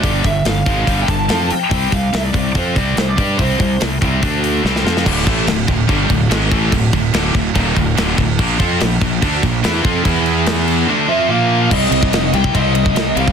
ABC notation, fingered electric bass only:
X:1
M:4/4
L:1/8
Q:1/4=144
K:Dm
V:1 name="Fingered electric bass" clef=bass
G,,, G,,, G,,, ^G,,, =G,,, G,,, F,, z | C,, C,, C,, C,, F,, C,, C,, G,, | C,, C,, C,, C,, D,,2 C,, F,, | D,,, A,,, D,,, D,,, G,,, D,,, ^G,,, A,,, |
D,,, D,,, D,,, D,,, _E,,, D,,, D,,, D,,, | B,,, F,, B,,, B,,, D,, B,,, E,, F,, | E,,4 z4 | [K:Cdor] C,, C,, F,,, C,, C,,2 C,, C,, |]